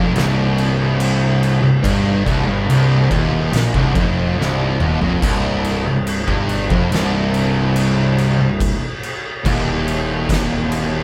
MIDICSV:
0, 0, Header, 1, 4, 480
1, 0, Start_track
1, 0, Key_signature, -3, "minor"
1, 0, Tempo, 845070
1, 1045, Time_signature, 4, 2, 24, 8
1, 6267, End_track
2, 0, Start_track
2, 0, Title_t, "Distorted electric guitar"
2, 0, Program_c, 0, 30
2, 0, Note_on_c, 0, 41, 102
2, 70, Note_off_c, 0, 41, 0
2, 74, Note_on_c, 0, 36, 110
2, 907, Note_off_c, 0, 36, 0
2, 914, Note_on_c, 0, 36, 81
2, 1034, Note_off_c, 0, 36, 0
2, 1036, Note_on_c, 0, 43, 111
2, 1274, Note_off_c, 0, 43, 0
2, 1277, Note_on_c, 0, 36, 100
2, 1394, Note_off_c, 0, 36, 0
2, 1401, Note_on_c, 0, 43, 89
2, 1516, Note_off_c, 0, 43, 0
2, 1528, Note_on_c, 0, 36, 96
2, 1760, Note_off_c, 0, 36, 0
2, 1763, Note_on_c, 0, 39, 98
2, 1997, Note_off_c, 0, 39, 0
2, 2005, Note_on_c, 0, 46, 108
2, 2118, Note_off_c, 0, 46, 0
2, 2122, Note_on_c, 0, 36, 97
2, 2237, Note_off_c, 0, 36, 0
2, 2241, Note_on_c, 0, 41, 116
2, 2477, Note_off_c, 0, 41, 0
2, 2486, Note_on_c, 0, 36, 104
2, 2719, Note_off_c, 0, 36, 0
2, 2721, Note_on_c, 0, 39, 107
2, 2837, Note_off_c, 0, 39, 0
2, 2849, Note_on_c, 0, 41, 109
2, 2960, Note_off_c, 0, 41, 0
2, 2965, Note_on_c, 0, 36, 113
2, 3318, Note_off_c, 0, 36, 0
2, 3330, Note_on_c, 0, 36, 67
2, 3520, Note_off_c, 0, 36, 0
2, 3559, Note_on_c, 0, 43, 86
2, 3795, Note_off_c, 0, 43, 0
2, 3804, Note_on_c, 0, 41, 106
2, 3918, Note_off_c, 0, 41, 0
2, 3926, Note_on_c, 0, 36, 114
2, 4758, Note_off_c, 0, 36, 0
2, 4764, Note_on_c, 0, 36, 85
2, 4957, Note_off_c, 0, 36, 0
2, 5361, Note_on_c, 0, 39, 104
2, 6267, Note_off_c, 0, 39, 0
2, 6267, End_track
3, 0, Start_track
3, 0, Title_t, "Picked electric bass"
3, 0, Program_c, 1, 34
3, 0, Note_on_c, 1, 29, 101
3, 70, Note_off_c, 1, 29, 0
3, 74, Note_on_c, 1, 24, 105
3, 897, Note_off_c, 1, 24, 0
3, 916, Note_on_c, 1, 24, 90
3, 1032, Note_off_c, 1, 24, 0
3, 1045, Note_on_c, 1, 31, 101
3, 1269, Note_off_c, 1, 31, 0
3, 1285, Note_on_c, 1, 24, 93
3, 1393, Note_off_c, 1, 24, 0
3, 1397, Note_on_c, 1, 31, 94
3, 1512, Note_off_c, 1, 31, 0
3, 1517, Note_on_c, 1, 24, 93
3, 1745, Note_off_c, 1, 24, 0
3, 1764, Note_on_c, 1, 27, 98
3, 1988, Note_off_c, 1, 27, 0
3, 2002, Note_on_c, 1, 34, 102
3, 2115, Note_off_c, 1, 34, 0
3, 2124, Note_on_c, 1, 24, 106
3, 2237, Note_off_c, 1, 24, 0
3, 2244, Note_on_c, 1, 29, 104
3, 2468, Note_off_c, 1, 29, 0
3, 2483, Note_on_c, 1, 24, 99
3, 2708, Note_off_c, 1, 24, 0
3, 2722, Note_on_c, 1, 27, 86
3, 2836, Note_off_c, 1, 27, 0
3, 2841, Note_on_c, 1, 29, 104
3, 2955, Note_off_c, 1, 29, 0
3, 2964, Note_on_c, 1, 24, 103
3, 3302, Note_off_c, 1, 24, 0
3, 3321, Note_on_c, 1, 24, 81
3, 3547, Note_off_c, 1, 24, 0
3, 3566, Note_on_c, 1, 31, 95
3, 3789, Note_off_c, 1, 31, 0
3, 3807, Note_on_c, 1, 29, 109
3, 3918, Note_off_c, 1, 29, 0
3, 3925, Note_on_c, 1, 24, 108
3, 4742, Note_off_c, 1, 24, 0
3, 4762, Note_on_c, 1, 24, 85
3, 4987, Note_off_c, 1, 24, 0
3, 5366, Note_on_c, 1, 27, 82
3, 6267, Note_off_c, 1, 27, 0
3, 6267, End_track
4, 0, Start_track
4, 0, Title_t, "Drums"
4, 88, Note_on_c, 9, 49, 85
4, 103, Note_on_c, 9, 38, 120
4, 145, Note_off_c, 9, 49, 0
4, 160, Note_off_c, 9, 38, 0
4, 330, Note_on_c, 9, 49, 68
4, 387, Note_off_c, 9, 49, 0
4, 568, Note_on_c, 9, 49, 95
4, 625, Note_off_c, 9, 49, 0
4, 811, Note_on_c, 9, 49, 62
4, 868, Note_off_c, 9, 49, 0
4, 1046, Note_on_c, 9, 36, 113
4, 1050, Note_on_c, 9, 49, 92
4, 1103, Note_off_c, 9, 36, 0
4, 1107, Note_off_c, 9, 49, 0
4, 1286, Note_on_c, 9, 36, 99
4, 1291, Note_on_c, 9, 49, 68
4, 1343, Note_off_c, 9, 36, 0
4, 1348, Note_off_c, 9, 49, 0
4, 1532, Note_on_c, 9, 49, 83
4, 1588, Note_off_c, 9, 49, 0
4, 1766, Note_on_c, 9, 36, 109
4, 1769, Note_on_c, 9, 49, 66
4, 1823, Note_off_c, 9, 36, 0
4, 1825, Note_off_c, 9, 49, 0
4, 2006, Note_on_c, 9, 49, 96
4, 2021, Note_on_c, 9, 38, 118
4, 2063, Note_off_c, 9, 49, 0
4, 2078, Note_off_c, 9, 38, 0
4, 2126, Note_on_c, 9, 36, 103
4, 2183, Note_off_c, 9, 36, 0
4, 2246, Note_on_c, 9, 36, 114
4, 2248, Note_on_c, 9, 49, 65
4, 2303, Note_off_c, 9, 36, 0
4, 2305, Note_off_c, 9, 49, 0
4, 2507, Note_on_c, 9, 38, 67
4, 2564, Note_off_c, 9, 38, 0
4, 2728, Note_on_c, 9, 45, 98
4, 2785, Note_off_c, 9, 45, 0
4, 2849, Note_on_c, 9, 43, 78
4, 2906, Note_off_c, 9, 43, 0
4, 2967, Note_on_c, 9, 36, 121
4, 2971, Note_on_c, 9, 49, 74
4, 2971, Note_on_c, 9, 55, 90
4, 3024, Note_off_c, 9, 36, 0
4, 3028, Note_off_c, 9, 49, 0
4, 3028, Note_off_c, 9, 55, 0
4, 3206, Note_on_c, 9, 49, 61
4, 3263, Note_off_c, 9, 49, 0
4, 3446, Note_on_c, 9, 49, 83
4, 3503, Note_off_c, 9, 49, 0
4, 3566, Note_on_c, 9, 36, 97
4, 3623, Note_off_c, 9, 36, 0
4, 3687, Note_on_c, 9, 49, 61
4, 3744, Note_off_c, 9, 49, 0
4, 3807, Note_on_c, 9, 36, 111
4, 3864, Note_off_c, 9, 36, 0
4, 3930, Note_on_c, 9, 49, 88
4, 3945, Note_on_c, 9, 38, 115
4, 3987, Note_off_c, 9, 49, 0
4, 4002, Note_off_c, 9, 38, 0
4, 4169, Note_on_c, 9, 49, 61
4, 4225, Note_off_c, 9, 49, 0
4, 4406, Note_on_c, 9, 49, 87
4, 4463, Note_off_c, 9, 49, 0
4, 4648, Note_on_c, 9, 49, 62
4, 4705, Note_off_c, 9, 49, 0
4, 4888, Note_on_c, 9, 36, 113
4, 4890, Note_on_c, 9, 49, 90
4, 4944, Note_off_c, 9, 36, 0
4, 4947, Note_off_c, 9, 49, 0
4, 5131, Note_on_c, 9, 49, 66
4, 5187, Note_off_c, 9, 49, 0
4, 5368, Note_on_c, 9, 36, 107
4, 5371, Note_on_c, 9, 49, 92
4, 5425, Note_off_c, 9, 36, 0
4, 5428, Note_off_c, 9, 49, 0
4, 5610, Note_on_c, 9, 49, 68
4, 5667, Note_off_c, 9, 49, 0
4, 5847, Note_on_c, 9, 36, 109
4, 5849, Note_on_c, 9, 49, 92
4, 5864, Note_on_c, 9, 38, 111
4, 5903, Note_off_c, 9, 36, 0
4, 5906, Note_off_c, 9, 49, 0
4, 5921, Note_off_c, 9, 38, 0
4, 6087, Note_on_c, 9, 49, 73
4, 6144, Note_off_c, 9, 49, 0
4, 6267, End_track
0, 0, End_of_file